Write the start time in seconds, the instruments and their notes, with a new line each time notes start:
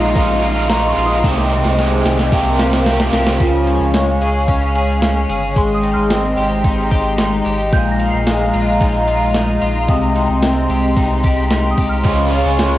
Already playing: sub bass A#1, clean electric guitar A#2 G#3 D#4 F4, overdriven electric guitar G#3 D#4 F4, analog synth pad G#3 D#5 F5 A#5
0.15 sub bass A#1, overdriven electric guitar D#3 G#3 D#4 F4, clean electric guitar D#4, kick, ride
0.43 clean electric guitar F4, ride
0.69 overdriven electric guitar D#3 G#3 D#4 F4, clean electric guitar D#4, celesta A#5, snare, ride, tambourine
0.88 celesta C#6
0.97 sub bass A#1, clean electric guitar F4, ride
1.06 celesta D#6
1.22 sub bass C2, overdriven electric guitar C3 D#3 G#3 C4, clean electric guitar C3, analog synth pad G5, kick, snare, ride
1.28 overdriven electric guitar G4
1.38 snare
1.51 clean electric guitar C4, ride
1.64 sub bass C2, snare
1.78 clean electric guitar G#3, snare, ride
2.05 sub bass C2, clean electric guitar G4, snare, ride
2.19 snare
2.31 sub bass C2, clean electric guitar C3, overdriven electric guitar F3 A#3 C4 G4, analog synth pad A#4 F5, kick, ride
2.59 clean electric guitar G4, snare, ride
2.73 snare
2.85 overdriven electric guitar F3 A#3 C4 G4, clean electric guitar C4, snare, ride
3.00 snare
3.13 sub bass C2, clean electric guitar G4, snare, ride
3.27 snare
3.40 sub bass C#2, clean electric guitar C#3, analog synth pad G#3 C#5 F5 C#6, kick, ride
3.67 clean electric guitar C#4, ride
3.80 sub bass C#2
3.94 clean electric guitar G#3, celesta G#5, snare, ride, tambourine
4.21 sub bass C#2, clean electric guitar G#4, ride
4.48 sub bass C#2, clean electric guitar C#4, kick, ride
4.75 clean electric guitar G#4, ride
5.02 clean electric guitar C#4, snare, ride, tambourine
5.29 sub bass G1, clean electric guitar G#4, ride
5.56 sub bass G#1, clean electric guitar G#3, analog synth pad D#5 G5 C6, celesta C6, kick, ride
5.75 celesta D#6
5.83 clean electric guitar D#4, ride
5.94 sub bass G#1, celesta F6
6.10 clean electric guitar C4, snare, ride, tambourine
6.37 sub bass G#1, clean electric guitar G4, ride
6.64 sub bass G#1, clean electric guitar D#4, kick, ride
6.91 clean electric guitar G4, kick, ride
7.18 clean electric guitar D#4, snare, ride, tambourine
7.45 sub bass G#1, clean electric guitar G4, ride
7.72 sub bass A#1, clean electric guitar A#2, analog synth pad D#5 F5 A#5, celesta G6, kick, ride
7.92 celesta A#6
7.99 clean electric guitar D#4, ride
8.10 sub bass A#1, celesta C7
8.27 clean electric guitar G#3, snare, ride, tambourine
8.54 sub bass A#1, clean electric guitar F4, ride
8.80 sub bass A#1, clean electric guitar D#4, kick, ride
9.08 clean electric guitar F4, ride
9.34 clean electric guitar D#4, snare, ride, tambourine
9.62 sub bass A#1, clean electric guitar F4, ride
9.88 sub bass C2, clean electric guitar C3, analog synth pad G5 C6, celesta D#6, kick, ride
10.16 clean electric guitar D#4, ride
10.29 sub bass C2
10.42 clean electric guitar C4, snare, ride, tambourine
10.70 sub bass C2, clean electric guitar G4, ride
10.97 sub bass C2, clean electric guitar D#4, kick, ride
11.24 clean electric guitar G4, kick, ride
11.51 clean electric guitar D#4, celesta C6, snare, ride, tambourine
11.71 celesta D#6
11.78 sub bass C2, clean electric guitar G4, kick, ride
11.89 celesta F6
12.04 sub bass C#2, overdriven electric guitar C#3 F3 G#3 C#4 F4, clean electric guitar C#3, analog synth pad C#5 F5 C#6, kick, ride
12.31 overdriven electric guitar G#3 C#4 F4, clean electric guitar F4, ride
12.45 sub bass C#2
12.59 clean electric guitar G#3, celesta G#5, snare, ride, tambourine